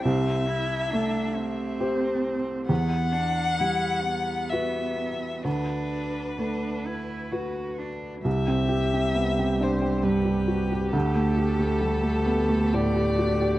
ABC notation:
X:1
M:3/4
L:1/16
Q:1/4=66
K:Clyd
V:1 name="Violin"
e8 z4 | f8 e4 | B8- B2 z2 | e6 c2 B4 |
A8 d4 |]
V:2 name="Viola"
z12 | z12 | z12 | G12- |
G12 |]
V:3 name="Cello"
C2 E2 D2 C6 | B,2 D2 E2 B,6 | D4 D2 E2 F2 D2 | G,12 |
A,12 |]
V:4 name="Felt piano"
C,,4 A,4 [Gc]4 | E,,4 G,4 [FB]4 | D,,4 A,4 [FB]4 | C,, C G C B, C D C G,, G F G |
D,, A, G A, G, A, B, A, A,, G F G |]
V:5 name="Double bass" clef=bass
z12 | z12 | z12 | C,,12 |
D,,12 |]